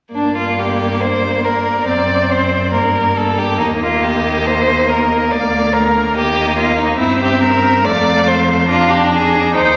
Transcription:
0.14 G2 A#3 D4 D5
0.37 F4
0.59 G4
1.01 C5
1.44 A#4
1.87 F#2 C4 D5
2.31 C5
2.73 G2 A#3 A#4
3.17 A4
3.38 G4
3.60 D#2 D#4 D#5
3.83 F4
4.04 G4
4.47 C5
4.89 A#4
5.30 D2 D5 F5
5.73 A#4
6.15 D#2 A#3 G4 D#5
6.57 F4
6.79 D#4
6.99 G2 C4 E4 E5
7.22 G4
7.43 A#4
7.84 F2 A3 D5 F5
8.27 C5
8.70 D4 F4 A#5
8.90 G4
9.13 G#4
9.55 D#2 D#4 C5 G5

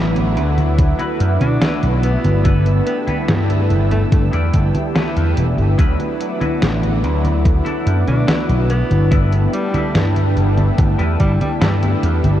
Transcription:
Already playing: A1 F#3 A3 B3 D4 E4 F#4 B4 F#5 D6 E6
0.16 closed hi-hat, high conga
0.36 D2 F#3 A3 B3 D4 E4, closed hi-hat
0.57 muted clean electric guitar stroke, closed hi-hat, high conga
0.78 muted clean electric guitar stroke, kick, closed hi-hat, high conga
0.99 E4 F#4 B4, closed hi-hat, high conga
1.20 F#2, closed hi-hat
1.40 B2 F#3 A3 B3 D4 F#4, closed hi-hat, high conga
1.61 E4 F#4 B4, snare, closed hi-hat, high conga
1.83 B1, closed hi-hat, high conga
2.03 B3, closed hi-hat
2.25 G1, closed hi-hat, high conga
2.44 G3 A3 B3 D4 E4 A4 B4 G5 A5, kick, closed hi-hat, high conga
2.66 closed hi-hat, high conga
2.86 B3, muted clean electric guitar stroke, closed hi-hat
3.07 B3 E4 A4 B4, muted slap bass stroke, closed hi-hat, high conga
3.28 G2, snare, closed hi-hat, high conga
3.50 closed hi-hat, high conga
3.70 G1 G3 A3 B3 D4 E4, closed hi-hat
3.91 A3, muted clean electric guitar stroke, closed hi-hat, high conga
4.11 G1 A3, muted clean electric guitar stroke, kick, closed hi-hat, high conga
4.32 E2 E4 A4 D5, closed hi-hat, high conga
4.54 G1, kick, closed hi-hat
4.73 G3 A3 B3 D4 G4, closed hi-hat, high conga
4.95 E4 A4 B4, snare, closed hi-hat, high conga
5.17 E2, closed hi-hat, high conga
5.37 E1, closed hi-hat
5.58 G1, closed hi-hat, high conga
5.77 D2 F#3 A3 B3 D4 E4 F#4 B4 F#5 D6, kick, closed hi-hat, high conga
6.00 closed hi-hat, high conga
6.20 muted clean electric guitar stroke, closed hi-hat
6.41 E4 F#4 B4, closed hi-hat, high conga
6.62 A1, snare, closed hi-hat, high conga
6.83 closed hi-hat, high conga
7.03 D2 F#3 A3 B3 D4 E4, closed hi-hat
7.24 muted clean electric guitar stroke, closed hi-hat, high conga
7.44 muted clean electric guitar stroke, kick, closed hi-hat, high conga
7.65 E4 F#4 A4, closed hi-hat, high conga
7.87 F#2, closed hi-hat
8.06 B2 F#3 A3 B3 D4 F#4, closed hi-hat, high conga
8.27 E4 F#4 B4, snare, closed hi-hat, high conga
8.49 B1, closed hi-hat, high conga
8.70 B3, closed hi-hat
8.91 G1, closed hi-hat, high conga
9.10 G3 A3 B3 D4 E4 A4 B4 G5 A5 E6, kick, closed hi-hat, high conga
9.33 closed hi-hat, high conga
9.53 G3, muted clean electric guitar stroke, closed hi-hat
9.74 E4 A4 B4, muted slap bass stroke, closed hi-hat, high conga
9.95 G2, snare, closed hi-hat, high conga
10.16 closed hi-hat, high conga
10.36 G1 G3 A3 B3 D4 E4, closed hi-hat
10.57 muted clean electric guitar stroke, closed hi-hat, high conga
10.78 G1, muted clean electric guitar stroke, kick, closed hi-hat, high conga
10.98 E2 E4 A4 B4, closed hi-hat, high conga
11.20 G1 G3, kick, closed hi-hat
11.39 G3 A3 B3 D4 G4, closed hi-hat, high conga
11.61 G2 G3 E4 A4 B4, snare, closed hi-hat, high conga
11.83 closed hi-hat, high conga
12.03 E2, closed hi-hat
12.24 G1, closed hi-hat, high conga

